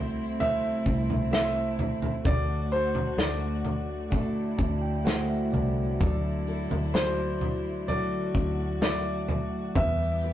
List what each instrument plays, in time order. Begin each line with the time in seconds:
Already playing: fingered electric bass C2, steel-string acoustic guitar C3 C4 E4 A4, tine electric piano C3 A3 E4 F#4 C5, string section G3 A3 C4 E4, grand piano C5
0.39 tine electric piano A3 E4 C5, steel-string acoustic guitar C4 E4 A4, grand piano E5, floor tom
0.86 fingered electric bass C2, steel-string acoustic guitar C4, kick
1.10 floor tom
1.31 tine electric piano A3 E4 C5, steel-string acoustic guitar C4 E4 A4, grand piano E5, snare
1.79 floor tom
2.02 floor tom
2.24 fingered electric bass D2, tine electric piano D3 A3 F#4 D5, steel-string acoustic guitar D3 A4, string section D3 F#3 F#4, grand piano D5, kick, floor tom
2.71 steel-string acoustic guitar D4 F#4 A4, grand piano C5
2.95 floor tom
3.17 fingered electric bass D2, tine electric piano A3 F#4 D5, steel-string acoustic guitar F#4, grand piano D5, snare
3.65 floor tom
4.10 tine electric piano A3 F#4 D5, steel-string acoustic guitar D4 F#4 A4, string section E4, kick, floor tom
4.58 fingered electric bass D2, steel-string acoustic guitar D4, tine electric piano A5, kick
4.82 tine electric piano G5
5.04 tine electric piano A3 F#4 C5 F#5, steel-string acoustic guitar D4 F#4 A4, snare
5.29 tine electric piano E5
5.52 fingered electric bass C2, tine electric piano D5, floor tom
5.99 fingered electric bass D2, tine electric piano D3 F#3 E4 D5, steel-string acoustic guitar D3 A4, string section E4, kick, floor tom
6.47 steel-string acoustic guitar E4 F#4 A4
6.71 fingered electric bass D2, floor tom
6.94 tine electric piano F#3 E4 D5, steel-string acoustic guitar F#4, grand piano C5, snare
7.41 floor tom
7.87 tine electric piano F#3 E4 D5, steel-string acoustic guitar E4 F#4 A4, string section F#4, grand piano D5, floor tom
8.35 fingered electric bass D2, steel-string acoustic guitar E4, kick
8.80 tine electric piano F#3 E4 E5, steel-string acoustic guitar E4 F#4 A4, grand piano D5, snare
9.29 floor tom
9.74 fingered electric bass E2, tine electric piano E3 G3 E4 B4, string section E3 G3 B3 G4, steel-string acoustic guitar E3 B4, grand piano E5, kick, floor tom
10.23 steel-string acoustic guitar E4 G4 B4